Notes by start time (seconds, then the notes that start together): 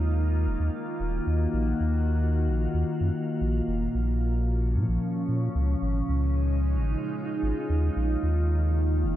Already playing: D#2 D#3 A#3 D#4 F4
0.46 D#1
0.60 D#2
1.00 D#1
1.05 F#4
1.27 D#2
1.53 A#1
1.80 D#2
2.47 A#1
2.74 D#2
3.01 F#2
3.41 A#1 A#2
3.68 F1
3.95 A#1
4.25 F3
4.37 C#4
4.75 A#2
4.88 A#1
5.28 A#2
5.55 C#2 C#3
5.82 G#1
6.05 D#4
6.09 C#2 G#3
6.52 F4
6.76 G#1
7.43 G#1
7.70 D#2 D#3
7.82 A#3
7.96 A#1
8.23 D#2
9.03 D#1